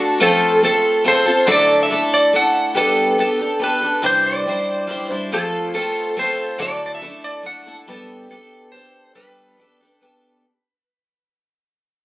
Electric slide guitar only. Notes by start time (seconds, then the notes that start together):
0.23 A4
0.65 A4
1.08 C5
1.52 D5
1.83 E5
2.14 D5
2.36 F#5
2.78 A4
3.20 A4
3.64 B4
4.06 C5
4.26 D5
5.34 A4
5.75 A4
6.19 C5
6.63 D5
6.86 D5
6.95 E5
7.24 D5
7.46 F#5
7.90 A4
8.31 A4
8.72 C5
9.15 B4